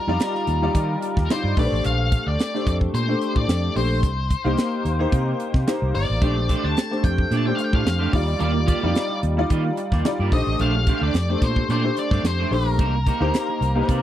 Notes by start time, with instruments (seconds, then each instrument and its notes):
Already playing: grand piano G3 D#4 F4 D5, lead electric guitar A#4
0.07 fretless electric bass F2, grand piano G3 D#4 F4 D5
0.20 snare, closed hi-hat
0.35 snare
0.47 fretless electric bass D#2, closed hi-hat
0.62 grand piano G3 D#4 F4 D5
0.75 fretless electric bass D#3, kick, closed hi-hat
1.02 closed hi-hat
1.17 fretless electric bass D#2, kick, snare
1.30 grand piano G3 D#4 F4 D5, lead electric guitar C5, snare, closed hi-hat
1.44 fretless electric bass G2
1.57 fretless electric bass A#1, grand piano A3 D4 G4 B4, lead electric guitar D5, kick, open hi-hat
1.65 grand piano C5
1.72 fretless electric bass A1
1.84 fretless electric bass A#1, lead electric guitar F5, closed hi-hat
2.12 kick, closed hi-hat
2.27 fretless electric bass D2, lead electric guitar D5
2.39 snare, closed hi-hat
2.54 grand piano A3 D4 G4 C5, snare
2.67 fretless electric bass F2, lead electric guitar D5, kick, closed hi-hat
2.81 kick
2.94 fretless electric bass A#2, lead electric guitar C5, closed hi-hat
3.08 grand piano A3 D4 G4 C5
3.21 closed hi-hat
3.36 fretless electric bass A2, lead electric guitar D5, kick
3.48 fretless electric bass F2, snare, closed hi-hat
3.75 fretless electric bass A#1, grand piano A3 D4 G4 C5, lead electric guitar C5, open hi-hat
4.03 fretless electric bass C2, kick, closed hi-hat
4.30 kick, closed hi-hat
4.44 fretless electric bass C2, grand piano A#3 D#4 G4 C5
4.58 snare, closed hi-hat
4.85 fretless electric bass D#2, closed hi-hat
4.99 grand piano A#3 D#4 G4 C5
5.12 fretless electric bass C3, kick, closed hi-hat
5.40 closed hi-hat
5.54 fretless electric bass C3, kick, snare
5.67 grand piano A#3 D#4 G4 C5, snare, closed hi-hat
5.82 fretless electric bass C2
5.95 fretless electric bass G1, lead electric guitar D5, open hi-hat
6.10 fretless electric bass A1
6.21 fretless electric bass A#1, clean electric guitar A3 D4 G4 C5, grand piano A3 D4 G4 C5, kick, closed hi-hat
6.36 muted clean electric guitar stroke
6.49 clean electric guitar A3 D4 G4 C5, kick, closed hi-hat
6.64 fretless electric bass D2, clean electric guitar A3 D4 G4 C5, lead electric guitar A5
6.76 muted clean electric guitar stroke, snare, closed hi-hat
6.91 grand piano A3 D4 G4 C5, muted clean electric guitar stroke, snare
7.04 fretless electric bass F2, lead electric guitar G5, kick, closed hi-hat
7.18 muted clean electric guitar stroke, kick
7.31 fretless electric bass A#2, clean electric guitar A3 D4 G4 D5, closed hi-hat
7.37 lead electric guitar A5
7.46 grand piano A3 D4 G4 C5, lead electric guitar G5, muted clean electric guitar stroke
7.55 lead electric guitar F5, muted clean electric guitar stroke, closed hi-hat
7.64 lead electric guitar G5
7.73 fretless electric bass A2, clean electric guitar A3 D4 G4 C5, lead electric guitar F5, kick
7.85 fretless electric bass F2, muted clean electric guitar stroke, snare, closed hi-hat
7.99 clean electric guitar A3 D4 G4 C5
8.12 fretless electric bass D#2, grand piano G3 D#4 F4 D5, lead electric guitar D5, muted clean electric guitar stroke, kick, open hi-hat
8.27 muted clean electric guitar stroke
8.39 fretless electric bass D#2, clean electric guitar A#3 F4 G4 D5, lead electric guitar D5, closed hi-hat
8.53 muted clean electric guitar stroke
8.66 clean electric guitar A#3 F4 G4 D5, lead electric guitar D5, kick, closed hi-hat
8.81 fretless electric bass F2, grand piano G3 D#4 F4 D5, clean electric guitar A#3 F4 G4 D5
8.94 muted clean electric guitar stroke, snare, closed hi-hat
9.09 muted clean electric guitar stroke
9.23 fretless electric bass D#2, closed hi-hat
9.37 grand piano G3 D#4 F4 D5, muted clean electric guitar stroke
9.50 fretless electric bass D#3, clean electric guitar A#3 F4 G4 D#5, kick, closed hi-hat
9.65 muted clean electric guitar stroke
9.77 muted clean electric guitar stroke, closed hi-hat
9.92 fretless electric bass D#2, clean electric guitar A#3 F4 G4 D5, kick, snare
10.05 grand piano G3 D#4 F4 D5, muted clean electric guitar stroke, snare, closed hi-hat
10.19 fretless electric bass G2, clean electric guitar A#3 F4 G4 D5
10.32 fretless electric bass A#1, grand piano A3 D4 G4 C5, lead electric guitar D#5, muted clean electric guitar stroke, kick, open hi-hat
10.47 fretless electric bass A1, muted clean electric guitar stroke
10.59 fretless electric bass A#1, clean electric guitar A3 D4 G4 C5, lead electric guitar F5, closed hi-hat
10.75 muted clean electric guitar stroke
10.87 clean electric guitar A3 D4 G4 C5, kick, closed hi-hat
11.01 fretless electric bass D2, clean electric guitar A3 D4 G4 C5, lead electric guitar D5
11.14 fretless electric bass F2, muted clean electric guitar stroke, snare, closed hi-hat
11.29 grand piano A3 D4 G4 C5, muted clean electric guitar stroke
11.42 fretless electric bass A#2, lead electric guitar C5, kick, closed hi-hat
11.56 muted clean electric guitar stroke, kick
11.69 fretless electric bass A#2, clean electric guitar A3 D4 G4 D5, lead electric guitar C5, closed hi-hat
11.84 grand piano A3 D4 G4 C5, muted clean electric guitar stroke
11.97 lead electric guitar D5, muted clean electric guitar stroke, closed hi-hat
12.11 fretless electric bass G2, clean electric guitar A3 D4 G4 C5, kick, snare
12.23 fretless electric bass F2, lead electric guitar C5, muted clean electric guitar stroke, snare, closed hi-hat
12.39 clean electric guitar A3 D4 G4 C5
12.51 fretless electric bass A#1, grand piano A3 D4 G4 C5, lead electric guitar A#4, muted clean electric guitar stroke, open hi-hat
12.66 muted clean electric guitar stroke
12.79 fretless electric bass C2, clean electric guitar A#3 D#4 G4 C5, kick, closed hi-hat
12.95 muted clean electric guitar stroke
13.06 clean electric guitar A#3 D#4 G4 C5, kick, closed hi-hat
13.20 fretless electric bass D2, grand piano A#3 D#4 G4 C5, clean electric guitar A#3 D#4 G4 C5
13.34 muted clean electric guitar stroke, snare, closed hi-hat
13.48 muted clean electric guitar stroke
13.61 fretless electric bass C2, closed hi-hat
13.75 grand piano A#3 D#4 G4 B4, muted clean electric guitar stroke
13.83 grand piano C5
13.88 fretless electric bass C3, clean electric guitar A#3 D#4 G4 D5, kick, closed hi-hat